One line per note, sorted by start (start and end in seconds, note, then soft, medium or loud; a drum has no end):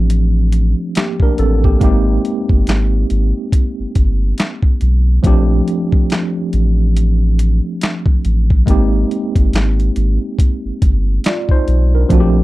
0.00 0.74 A1 medium
0.00 1.77 F3 medium
0.00 0.92 A3 medium
0.00 0.92 C4 medium
0.00 0.93 D4 medium
0.00 0.93 G4 medium
0.10 closed hi-hat medium
0.52 closed hi-hat medium
0.95 1.21 A#3 soft
0.95 1.21 G4 medium
0.95 snare loud
0.95 clap medium
0.95 closed hi-hat medium
1.20 1.38 D4 medium
1.20 1.38 A#4 medium
1.20 kick medium
1.38 1.76 A1 medium
1.38 1.63 C4 medium
1.38 1.63 A4 medium
1.38 closed hi-hat medium
1.64 1.80 A#3 soft
1.64 1.83 G4 medium
1.64 kick medium
1.79 2.19 G#1 loud
1.79 5.19 G#3 medium
1.79 5.20 A#3 medium
1.79 5.20 C4 medium
1.79 5.21 D#4 medium
1.79 kick loud
1.79 closed hi-hat medium
1.84 5.22 G4 medium
2.25 closed hi-hat medium
2.49 2.65 G1 medium
2.49 kick medium
2.67 3.05 G#1 medium
2.67 snare loud
2.67 clap medium
2.67 closed hi-hat medium
3.10 3.33 G#1 medium
3.10 closed hi-hat medium
3.52 kick medium
3.52 closed hi-hat medium
3.79 3.86 G1 soft
3.95 4.33 G1 medium
3.95 kick medium
3.95 closed hi-hat medium
4.38 snare loud
4.38 clap medium
4.38 closed hi-hat medium
4.63 kick medium
4.81 5.19 B1 medium
4.81 closed hi-hat medium
5.23 5.61 A#1 loud
5.23 8.62 F3 medium
5.23 8.63 A3 medium
5.23 8.63 C4 medium
5.23 8.64 D4 medium
5.23 kick medium
5.23 closed hi-hat medium
5.27 8.64 G4 medium
5.68 closed hi-hat medium
5.92 kick medium
6.10 snare loud
6.10 clap medium
6.10 closed hi-hat medium
6.53 7.60 A1 medium
6.53 closed hi-hat medium
6.97 closed hi-hat medium
7.39 closed hi-hat medium
7.81 snare loud
7.81 clap medium
7.81 closed hi-hat medium
8.06 kick medium
8.25 8.62 A1 medium
8.25 closed hi-hat medium
8.50 kick medium
8.66 9.05 G#1 loud
8.66 12.05 G#3 medium
8.66 12.06 A#3 medium
8.66 12.07 C4 medium
8.66 11.21 D#4 medium
8.66 kick medium
8.66 closed hi-hat medium
8.70 11.22 G4 medium
9.11 closed hi-hat medium
9.36 9.51 G1 medium
9.36 kick medium
9.36 closed hi-hat soft
9.53 9.90 G#1 medium
9.53 snare loud
9.53 clap medium
9.53 closed hi-hat medium
9.80 closed hi-hat soft
9.96 10.19 G#1 medium
9.96 closed hi-hat medium
10.39 kick medium
10.39 closed hi-hat medium
10.65 10.72 G1 soft
10.82 11.19 G1 medium
10.82 kick medium
10.82 closed hi-hat medium
11.24 11.50 F4 soft
11.24 11.50 D5 medium
11.24 snare loud
11.24 clap medium
11.24 closed hi-hat medium
11.49 11.92 D#4 medium
11.49 11.91 C5 medium
11.49 kick medium
11.68 12.05 B1 medium
11.68 closed hi-hat medium
11.95 12.11 D4 soft
11.95 12.35 A#4 medium
12.09 12.44 A#1 loud
12.09 12.44 F3 medium
12.09 12.44 A3 medium
12.09 12.44 C4 medium
12.09 12.44 D4 medium
12.09 kick medium
12.09 closed hi-hat medium
12.13 12.19 F#4 medium
12.20 12.44 G4 medium